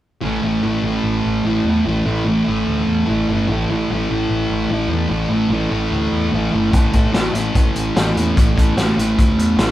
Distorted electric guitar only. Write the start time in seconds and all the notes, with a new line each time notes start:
0.21 A2 E3 A3
0.42 E3 A3
0.63 A2 E3 A3
0.84 E3 A3
1.45 A2 E3 A3
1.67 E3 A3
1.86 A2 E3 A3
2.05 E3 A3
2.25 A2 E3 A3
2.45 E3 A3
3.06 A2 E3 A3
3.29 E3 A3
3.48 A2 E3 A3
3.70 E3 A3
3.91 A2 E3 A3
4.09 E3 A3
4.71 A2 E3 A3
4.90 E3 A3
5.09 A2 E3 A3
5.29 E3 A3
5.51 A2 E3 A3
5.70 E3 A3
6.32 A2 E3 A3
6.52 E3 A3
6.72 A2 E3 A3
6.92 E3 A3
7.12 A2 E3 A3
7.34 E3 A3
7.96 A2 E3 A3
8.15 E3 A3
8.36 A2 E3 A3
8.56 E3 A3
8.76 A2 E3 A3
8.97 E3 A3
9.57 A2 E3 A3